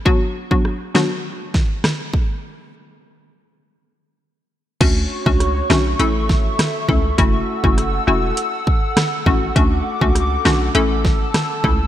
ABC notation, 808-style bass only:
X:1
M:4/4
L:1/16
Q:1/4=101
K:Bdor
V:1 name="808-style bass" clef=bass
z16 | z16 | D,,2 z C,,3 B,,,2 A,,,4 z2 C,,2 | F,,,2 z F,,,3 E,,,2 z6 A,,,2 |
D,,2 z C,,3 B,,,2 A,,,4 z2 C,,2 |]